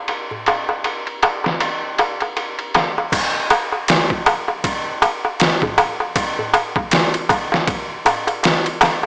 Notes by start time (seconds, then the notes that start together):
0.08 ride, darbuka tek
0.31 darbuka dum
0.46 ride, darbuka tek
0.69 darbuka tek
0.84 ride, darbuka tek
1.07 ride
1.23 ride, darbuka tek
1.44 snare, darbuka tek
1.60 ride, darbuka tek
1.98 ride, darbuka tek
2.20 ride, darbuka tek
2.37 ride, darbuka tek
2.59 ride
2.74 snare, ride, darbuka tek
2.98 darbuka tek
3.12 kick, crash, ride, darbuka tek
3.50 ride, darbuka tek
3.72 darbuka tek
3.88 snare, ride, darbuka tek
4.10 kick
4.26 ride, darbuka tek
4.48 darbuka tek
4.64 kick, ride, darbuka tek
5.02 ride, darbuka tek
5.25 darbuka tek
5.40 snare, ride, darbuka tek
5.62 kick, darbuka dum
5.78 ride, darbuka tek
6.00 darbuka tek
6.16 kick, ride, darbuka tek
6.39 darbuka dum
6.54 ride, darbuka tek
6.76 kick, darbuka tek
6.91 snare, ride, darbuka tek
7.14 ride
7.29 kick, ride, darbuka tek
7.52 snare, darbuka tek
7.67 kick, ride, darbuka tek
8.05 ride, darbuka tek, darbuka dum
8.27 ride, darbuka tek
8.43 snare, ride, darbuka tek
8.66 ride
8.81 snare, ride, darbuka tek